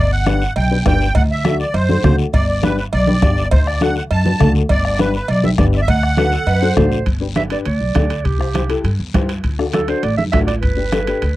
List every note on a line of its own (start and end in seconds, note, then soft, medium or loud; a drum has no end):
0.00 0.44 G1 medium
0.00 0.11 D5 loud
0.12 0.53 F#5 loud
0.26 0.42 D4 medium
0.26 0.42 G4 medium
0.26 0.42 B4 medium
0.26 bombo rim medium
0.26 high conga medium
0.26 short guiro medium
0.42 short guiro medium
0.56 0.80 B1 loud
0.56 0.84 G5 loud
0.56 cowbell medium
0.56 long guiro medium
0.71 0.76 D4 medium
0.71 0.76 G4 medium
0.71 0.76 B4 medium
0.85 1.10 G1 loud
0.85 1.06 D4 medium
0.85 1.06 G4 medium
0.85 1.07 B4 medium
0.85 1.14 G5 loud
0.85 bombo low medium
0.85 bombo rim medium
0.85 high conga medium
0.85 low timbale medium
0.85 short guiro medium
1.01 short guiro medium
1.15 1.63 D2 loud
1.15 1.22 F#5 loud
1.15 bombo low medium
1.15 cowbell loud
1.15 long guiro medium
1.31 1.58 E5 loud
1.44 1.60 D4 medium
1.44 1.60 F#4 medium
1.44 1.61 A4 medium
1.44 bombo rim medium
1.44 high conga medium
1.44 short guiro medium
1.60 1.75 D5 medium
1.60 short guiro medium
1.74 1.98 F#2 loud
1.74 2.16 C5 loud
1.74 cowbell medium
1.74 long guiro medium
1.89 1.94 D4 medium
1.89 1.94 F#4 medium
1.89 1.95 A4 medium
1.89 high conga medium
2.03 2.28 D2 medium
2.03 2.24 D4 medium
2.03 2.25 F#4 medium
2.03 2.25 A4 medium
2.03 bombo low medium
2.03 bombo rim medium
2.03 high conga medium
2.03 low conga medium
2.03 short guiro medium
2.18 short guiro medium
2.33 2.81 G1 medium
2.33 2.47 D5 loud
2.33 bombo low medium
2.33 cowbell medium
2.33 long guiro medium
2.48 2.62 D5 medium
2.62 2.78 D4 medium
2.62 2.78 G4 medium
2.62 2.77 B4 loud
2.62 2.79 B4 medium
2.62 bombo rim medium
2.62 high conga medium
2.62 short guiro medium
2.78 2.85 B4 medium
2.78 short guiro medium
2.93 3.17 B1 medium
2.93 3.48 D5 loud
2.93 cowbell medium
2.93 long guiro medium
3.07 3.12 D4 medium
3.07 3.13 G4 medium
3.07 3.13 B4 medium
3.07 high conga medium
3.22 3.46 G1 loud
3.22 3.43 D4 medium
3.22 3.43 G4 medium
3.22 3.43 D5 medium
3.22 bombo low medium
3.22 bombo rim medium
3.22 high conga medium
3.22 short guiro medium
3.37 short guiro medium
3.51 3.99 D2 loud
3.51 3.67 C5 loud
3.51 bombo low medium
3.51 cowbell loud
3.51 long guiro medium
3.67 3.82 D5 loud
3.67 bombo rim medium
3.81 3.96 D4 medium
3.81 3.97 F#4 medium
3.81 3.97 A4 medium
3.81 3.95 F#5 loud
3.81 bombo rim medium
3.81 high conga medium
3.81 short guiro medium
3.96 4.03 F#5 loud
3.96 short guiro medium
4.11 4.34 F#2 medium
4.11 4.52 A5 loud
4.11 cowbell medium
4.11 long guiro medium
4.25 4.30 D4 medium
4.25 4.30 F#4 medium
4.25 4.31 B4 medium
4.25 high conga medium
4.39 4.64 D2 loud
4.39 4.60 D4 medium
4.39 4.61 F#4 medium
4.39 4.61 A4 medium
4.39 bombo low medium
4.39 bombo rim medium
4.39 high conga medium
4.39 low conga medium
4.39 short guiro medium
4.55 short guiro medium
4.69 5.17 G1 loud
4.69 4.84 D5 loud
4.69 bombo low medium
4.69 cowbell medium
4.69 long guiro medium
4.85 4.99 D5 loud
4.85 bombo rim medium
4.99 5.15 D4 medium
4.99 5.15 G4 medium
4.99 5.15 B4 medium
4.99 5.14 B4 loud
4.99 bombo rim medium
4.99 high conga medium
4.99 short guiro medium
5.14 5.29 B4 medium
5.14 short guiro medium
5.28 5.52 B1 medium
5.28 5.45 D5 loud
5.28 cowbell medium
5.28 long guiro medium
5.43 5.49 D4 medium
5.43 5.49 G4 medium
5.43 5.49 B4 medium
5.43 5.51 E5 loud
5.43 high conga medium
5.58 5.82 G1 loud
5.58 5.79 D4 medium
5.58 5.79 G4 medium
5.58 5.79 B4 medium
5.58 5.65 D5 loud
5.58 bombo low medium
5.58 bombo rim medium
5.58 high conga medium
5.58 short guiro medium
5.73 5.75 E5 medium
5.73 short guiro medium
5.77 5.81 D5 medium
5.82 5.88 E5 loud
5.88 6.35 D2 loud
5.88 6.73 F#5 loud
5.88 bombo low medium
5.88 cowbell loud
5.88 long guiro medium
6.03 bombo rim medium
6.17 6.33 D4 medium
6.17 6.33 F#4 medium
6.17 6.33 A4 medium
6.17 6.34 B4 medium
6.17 bombo rim medium
6.17 high conga medium
6.17 short guiro medium
6.32 6.49 A4 medium
6.32 short guiro medium
6.47 6.71 F#2 medium
6.47 6.54 B4 loud
6.47 cowbell medium
6.47 long guiro medium
6.55 6.64 B4 loud
6.62 6.67 D4 medium
6.62 6.67 F#4 medium
6.62 6.67 A4 medium
6.62 7.07 C5 loud
6.76 7.01 A1 loud
6.76 6.97 D4 medium
6.76 6.98 F#4 medium
6.76 6.98 A4 medium
6.76 bombo low medium
6.76 bombo rim medium
6.76 high conga medium
6.76 low conga medium
6.76 short guiro medium
6.92 short guiro medium
7.06 7.54 G1 medium
7.06 bombo low medium
7.06 high timbale medium
7.06 long guiro medium
7.20 7.26 D4 medium
7.20 7.26 G4 medium
7.20 7.27 B4 medium
7.35 7.41 D4 medium
7.35 7.41 G4 soft
7.35 7.41 B4 medium
7.35 7.43 E5 medium
7.35 bombo rim medium
7.35 high conga medium
7.35 high timbale medium
7.35 short guiro medium
7.50 7.67 D4 medium
7.50 7.67 G4 medium
7.50 7.67 B4 medium
7.50 7.58 D5 medium
7.50 high timbale medium
7.50 short guiro medium
7.65 7.78 D2 medium
7.65 8.27 D5 medium
7.65 high timbale medium
7.65 long guiro medium
7.81 7.93 B1 medium
7.94 8.25 D2 medium
7.94 8.11 D4 medium
7.94 8.11 G4 medium
7.94 8.11 A4 medium
7.94 bombo low medium
7.94 bombo rim medium
7.94 high conga medium
7.94 high timbale medium
7.94 short guiro medium
8.10 high timbale medium
8.10 short guiro medium
8.25 8.73 C2 loud
8.25 8.85 G4 medium
8.25 bombo low medium
8.25 high timbale medium
8.25 long guiro medium
8.39 8.45 E4 medium
8.39 8.45 G4 soft
8.39 8.45 C5 medium
8.39 bombo rim medium
8.54 8.60 E4 medium
8.54 8.60 G4 medium
8.54 8.60 C5 medium
8.54 bombo rim medium
8.54 high conga medium
8.54 high timbale medium
8.54 short guiro medium
8.69 8.85 E4 medium
8.69 8.85 G4 medium
8.69 8.85 A4 medium
8.69 high timbale medium
8.69 short guiro medium
8.84 8.96 G2 medium
8.84 high timbale medium
8.84 long guiro medium
8.99 9.11 E2 medium
9.14 9.44 G2 medium
9.14 9.30 E4 medium
9.14 9.30 G4 medium
9.14 9.30 C5 medium
9.14 bombo low medium
9.14 bombo rim medium
9.14 high conga medium
9.14 high timbale medium
9.14 low timbale medium
9.14 short guiro medium
9.29 high timbale medium
9.29 short guiro medium
9.44 9.92 D2 loud
9.44 bombo low medium
9.44 high timbale medium
9.44 long guiro medium
9.58 9.64 D4 medium
9.58 9.64 F#4 medium
9.58 9.64 A4 medium
9.58 bombo rim medium
9.73 9.79 D4 medium
9.73 9.79 F#4 medium
9.73 9.79 A4 medium
9.73 9.91 A4 medium
9.73 bombo rim medium
9.73 high conga medium
9.73 high timbale medium
9.73 short guiro medium
9.88 10.04 D4 medium
9.88 10.04 F#4 medium
9.88 10.04 A4 medium
9.88 10.05 C5 medium
9.88 high timbale medium
9.88 short guiro medium
10.03 10.15 A1 loud
10.03 10.17 D5 medium
10.03 high timbale medium
10.03 long guiro medium
10.17 10.30 F#2 medium
10.17 10.24 E5 medium
10.17 high conga medium
10.32 10.63 A1 medium
10.32 10.49 D4 medium
10.32 10.49 F#4 medium
10.32 10.49 A4 medium
10.32 10.39 E5 loud
10.32 bombo low medium
10.32 bombo rim medium
10.32 high conga medium
10.32 high timbale medium
10.32 low timbale medium
10.32 short guiro medium
10.47 10.54 D5 medium
10.47 high timbale medium
10.47 short guiro medium
10.62 11.11 G1 loud
10.62 11.36 B4 medium
10.62 bombo low medium
10.62 high timbale medium
10.62 long guiro medium
10.76 10.82 D4 medium
10.76 10.83 G4 medium
10.76 10.83 B4 medium
10.92 10.98 D4 medium
10.92 10.98 G4 medium
10.92 10.98 A4 medium
10.92 bombo rim medium
10.92 high conga medium
10.92 high timbale medium
10.92 short guiro medium
11.07 11.23 D4 medium
11.07 11.23 G4 medium
11.07 11.24 B4 medium
11.07 high timbale medium
11.07 short guiro medium
11.22 11.34 D2 medium
11.22 high timbale medium
11.22 long guiro medium